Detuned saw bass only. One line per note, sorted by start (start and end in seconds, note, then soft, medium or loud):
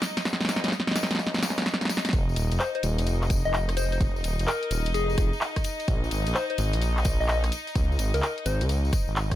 0.25 0.47 C#2 loud
0.49 0.62 G#1 medium
0.64 0.71 C#2 medium
0.96 1.12 G#1 medium
1.11 1.41 C#2 loud
1.43 1.83 C#2 medium
1.81 1.89 G#1 loud
2.13 2.35 F1 loud
2.36 2.50 D#1 medium
2.52 2.59 F1 medium
2.83 3.00 D#1 medium
2.99 3.43 F1 loud
3.45 3.99 F1 loud
4.01 4.22 F1 loud
4.24 4.37 D#1 medium
4.39 4.46 F1 medium
4.71 4.88 D#1 medium
4.86 5.16 F1 medium
5.18 5.31 F1 medium
5.88 6.10 A#1 loud
6.11 6.25 G#1 medium
6.27 6.34 A#1 medium
6.58 6.75 G#1 medium
6.74 7.18 A#1 loud
7.20 7.50 A#1 loud
7.76 7.97 C#2 loud
7.99 8.12 G#1 medium
8.14 8.21 C#2 medium
8.46 8.62 G#1 medium
8.61 8.91 C#2 loud
9.08 9.36 G#1 medium